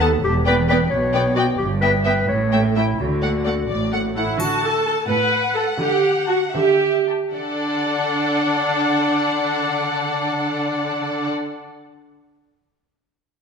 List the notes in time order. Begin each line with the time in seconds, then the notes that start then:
Already playing: D#2
0.01 B3 A4 F#5 A5
0.24 E1 E2 G4
0.46 B3 B4 D5 G5
0.69 B3 B4 D5 G5
0.90 B1 B2 C#5
1.14 B3 D5 G5
1.36 B3 F#4 D5 G5
1.58 G1 G2 G4
1.81 B3 B4 E5 G5
2.05 B3 B4 E5 G5
2.28 A1 A2 C#5
2.52 A3 E5 G5
2.64 A4
2.76 A3 E4 E5 G5
2.98 D2 D3 F#4
3.22 A3 D5 F#5
3.45 A3 D5 F#5
3.68 A1 A2 D5
3.93 A3 F#5
4.16 A3 E4 F#5
4.39 D3 F#4 A5, triangle
4.63 A4
4.86 A4 A5
5.08 A2 B4 F#5
5.55 A4 A5
5.78 D3 G4
6.28 F#4 A5
6.54 D3 G4 E5
7.07 A5
7.33 D3 D4 A4 D5 F#5